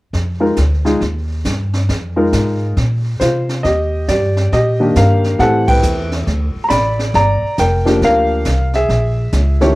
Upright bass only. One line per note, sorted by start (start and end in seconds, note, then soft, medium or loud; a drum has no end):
0.13 0.56 F2 medium
0.57 1.00 D2 medium
1.01 1.44 D#2 medium
1.45 1.88 G2 medium
1.89 2.32 F2 medium
2.33 2.76 G#2 medium
2.77 3.20 A#2 medium
3.21 3.63 C3 medium
3.64 4.07 D#2 medium
4.08 4.51 G2 medium
4.52 4.95 A#2 medium
4.96 5.38 G2 medium
5.39 5.82 A2 medium
5.83 6.26 E2 medium
6.27 6.53 D2 medium
6.55 muted upright bass stroke soft
6.70 7.13 A1 medium
7.14 7.40 G1 medium
7.42 muted upright bass stroke soft
7.58 8.00 F1 medium
8.02 8.44 D2 medium
8.46 8.88 C2 medium
8.89 9.31 A#1 medium
9.33 9.75 C#2 medium